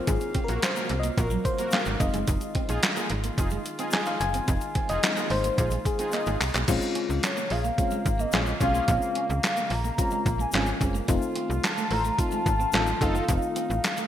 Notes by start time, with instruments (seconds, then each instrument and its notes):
Already playing: brass ensemble C3 F#3 A#3 F5, fm electric piano F#3 A#3 C4 F4
0.07 fm bass G#1, clean electric guitar D#4, fm electric piano G#4, kick, closed hi-hat, shaker
0.21 closed hi-hat, shaker
0.35 clean electric guitar C4, kick, closed hi-hat
0.44 fm electric piano A#4
0.48 fm bass A#1, analog polysynth A#3 F#4 A#4, muted clean electric guitar stroke, closed hi-hat, shaker
0.62 fm electric piano C5, snare, clap, closed hi-hat, shaker
0.76 analog polysynth A#3 F#4 A#4, clean electric guitar A#3, shaker
0.89 fm bass C2, muted clean electric guitar stroke, closed hi-hat
1.00 fm electric piano D#5, closed hi-hat
1.04 clean electric guitar A#3, shaker
1.18 fm bass A#1, analog polysynth A#3 F#4 A#4, fm electric piano A#4, kick, closed hi-hat, shaker
1.30 clean electric guitar F#3, shaker
1.45 fm electric piano C5, muted clean electric guitar stroke, kick, closed hi-hat, shaker
1.58 analog polysynth A#3 F#4 A#4, clean electric guitar A#3, closed hi-hat, shaker
1.71 clean electric guitar C4, fm electric piano F5, snare, clap, closed hi-hat, shaker
1.86 fm bass G#1, muted clean electric guitar stroke, closed hi-hat, shaker
2.00 fm bass F1, brass ensemble D#3 G#3 F4, fm electric piano G#3 C4 D#4 D#5, kick, closed hi-hat, shaker
2.14 fm bass F#1, clean electric guitar G#3, closed hi-hat, shaker
2.27 fm bass F1, clean electric guitar D#4, kick, closed hi-hat, shaker
2.41 closed hi-hat, shaker
2.55 clean electric guitar C4, kick, closed hi-hat
2.69 fm bass A#1, analog polysynth D#4 F4 G#4, muted clean electric guitar stroke, closed hi-hat, shaker
2.83 snare, clap, closed hi-hat, shaker
2.96 clean electric guitar A#3, analog polysynth D#4 F4 G#4, shaker
3.10 fm bass G#1, muted clean electric guitar stroke, closed hi-hat
3.24 clean electric guitar A#3, closed hi-hat, shaker
3.38 fm bass F1, analog polysynth D#4 F4 G#4, kick, closed hi-hat, shaker
3.50 clean electric guitar G#3, shaker
3.65 muted clean electric guitar stroke, closed hi-hat, shaker
3.79 clean electric guitar C4, analog polysynth D#4 F4 G#4, closed hi-hat, shaker
3.91 clean electric guitar D#4, fm electric piano G#5, snare, clap, closed hi-hat, shaker
4.06 fm electric piano F5, muted clean electric guitar stroke, closed hi-hat, shaker
4.20 fm bass F#1, fm electric piano G#5, closed hi-hat, shaker
4.34 clean electric guitar C4, closed hi-hat, shaker
4.48 fm bass F1, clean electric guitar D#4, kick, closed hi-hat, shaker
4.61 closed hi-hat, shaker
4.75 clean electric guitar C4, kick, closed hi-hat
4.89 fm bass F1, analog polysynth D#4 F4 G#4, fm electric piano D#5, muted clean electric guitar stroke, closed hi-hat, shaker
5.03 fm electric piano G#3 C4 D#4, snare, clap, closed hi-hat, shaker
5.17 clean electric guitar A#3, analog polysynth D#4 F4 G#4, closed hi-hat, shaker
5.30 fm bass G#1, fm electric piano C5, muted clean electric guitar stroke, open hi-hat
5.44 clean electric guitar A#3, closed hi-hat, shaker
5.58 fm bass A#1, analog polysynth D#4 F4 G#4, kick, closed hi-hat, shaker
5.71 clean electric guitar G#3, closed hi-hat, shaker
5.85 fm electric piano G#4, muted clean electric guitar stroke, kick, closed hi-hat, shaker
5.99 clean electric guitar C4, analog polysynth D#4 F4 G#4, closed hi-hat, shaker
6.11 clean electric guitar A#3, fm electric piano D#5, clap, closed hi-hat, shaker
6.26 fm bass G#1, muted clean electric guitar stroke, closed hi-hat, shaker
6.41 fm bass C2, clap, open hi-hat, shaker
6.54 fm bass B1, clean electric guitar G#3, clap, closed hi-hat, shaker
6.68 fm bass A#1, brass ensemble C#3 G#3 A#3, fm electric piano G#3 C4 C#4 F4, clean electric guitar D#4, kick, closed hi-hat, crash, shaker
6.82 shaker
6.95 clean electric guitar C#4, closed hi-hat
7.09 fm bass C#2, muted clean electric guitar stroke, shaker
7.23 soft synth lead C#5, snare, clap, closed hi-hat, shaker
7.37 clean electric guitar A#3, shaker
7.50 fm bass A#1, analog polysynth C#4 F4 G#4, soft synth lead F5, muted clean electric guitar stroke, open hi-hat
7.64 clean electric guitar A#3, shaker
7.78 fm electric piano G#3 C4 C#4 F4, kick, closed hi-hat, shaker
7.91 clean electric guitar G#3, shaker
8.06 fm bass G#1, muted clean electric guitar stroke, kick, closed hi-hat, shaker
8.19 clean electric guitar A#3, soft synth lead D#5, shaker
8.31 fm bass A#1, fm electric piano G#3 C4 C#4 F4, clean electric guitar C#4, analog polysynth C#4 F4 G#4, snare, clap, closed hi-hat, shaker
8.46 muted clean electric guitar stroke, shaker
8.61 fm bass B1, fm electric piano G#3 C4 C#4 F4, analog polysynth C#4 F4 G#4, soft synth lead F5, kick, closed hi-hat, shaker
8.74 clean electric guitar A#3, shaker
8.88 fm bass A#1, fm electric piano G#3 C4 C#4 F4, clean electric guitar D#4, kick, closed hi-hat, shaker
9.02 shaker
9.15 clean electric guitar C#4, closed hi-hat
9.29 fm bass C#2, soft synth lead F5, muted clean electric guitar stroke, shaker
9.43 snare, clap, closed hi-hat, shaker
9.57 clean electric guitar A#3, shaker
9.70 fm bass A#1, soft synth lead A#5, muted clean electric guitar stroke, open hi-hat
9.84 clean electric guitar A#3, shaker
9.98 fm electric piano G#3 C4 C#4 F4, kick, closed hi-hat, shaker
10.11 clean electric guitar G#3, shaker
10.26 fm bass A#1, muted clean electric guitar stroke, kick, closed hi-hat, shaker
10.39 clean electric guitar A#3, soft synth lead G#5, shaker
10.52 fm bass G#1, fm electric piano G#3 C4 C#4 F4, clean electric guitar C#4, soft synth lead G#5, snare, clap, closed hi-hat, shaker
10.66 muted clean electric guitar stroke, shaker
10.81 fm bass F#1, fm electric piano G#3 C4 C#4 F4, kick, closed hi-hat, shaker
10.95 clean electric guitar A#3, shaker
11.08 fm bass F1, brass ensemble D#3 A3 F4, fm electric piano A3 C4 D#4 F4, clean electric guitar D#4, kick, closed hi-hat, shaker
11.22 shaker
11.36 clean electric guitar C4, closed hi-hat
11.50 fm bass C2, muted clean electric guitar stroke, shaker
11.64 soft synth lead A5, snare, clap, closed hi-hat, shaker
11.77 clean electric guitar A3, shaker
11.91 fm bass A1, analog polysynth F4 A4 C5, soft synth lead A#5, muted clean electric guitar stroke, open hi-hat
12.05 clean electric guitar A3, shaker
12.18 fm electric piano A3 C4 D#4 F4, soft synth lead A5, kick, closed hi-hat, shaker
12.31 clean electric guitar G#3, shaker
12.46 fm bass G#1, muted clean electric guitar stroke, kick, closed hi-hat, shaker
12.60 clean electric guitar C4, shaker
12.72 fm bass A1, fm electric piano A3 C4 D#4 F4, clean electric guitar D#4, analog polysynth D#4 F4 A4, snare, clap, closed hi-hat, shaker
12.87 muted clean electric guitar stroke, shaker
13.01 fm bass F#1, fm electric piano A3 C4 D#4 F4, analog polysynth D#4 F4 A4, soft synth lead F5, kick, closed hi-hat, shaker
13.15 clean electric guitar C4, shaker
13.28 fm bass F1, fm electric piano A3 C4 D#4 F4, clean electric guitar D#4, brass ensemble D#4, kick, closed hi-hat, shaker
13.42 shaker
13.56 clean electric guitar C4, closed hi-hat, shaker
13.70 fm bass A1, muted clean electric guitar stroke, shaker
13.84 snare, clap, closed hi-hat, shaker
13.97 clean electric guitar A3, closed hi-hat, shaker